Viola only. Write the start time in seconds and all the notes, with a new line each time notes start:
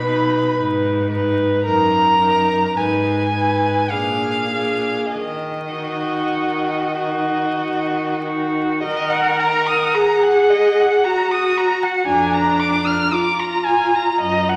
0.05 D#4
0.59 D#4
1.11 D#4
1.65 D#4
2.20 D#4
2.76 D#4
3.33 D#4
3.91 D4
4.51 D4
5.76 D#4
7.02 D#4
8.25 D#4
8.84 A#4
9.94 G#4
11.05 F#4
12.07 D4
13.12 F4